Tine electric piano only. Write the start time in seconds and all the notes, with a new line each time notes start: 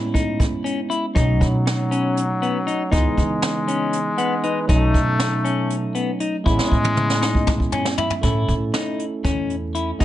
Already playing: G#3 B3 C#4 E4
1.14 F#3 A3 C#4 D#4
2.90 E3 G#3 B3 D#4
4.18 F#5
4.44 B4
4.67 F#3 A3 C#4 D#4
6.44 G#3 B3 C#4 E4
7.72 G#5
7.99 E5
8.21 A3 C#4 E4 A4
9.99 G#3 B3 E4 G#4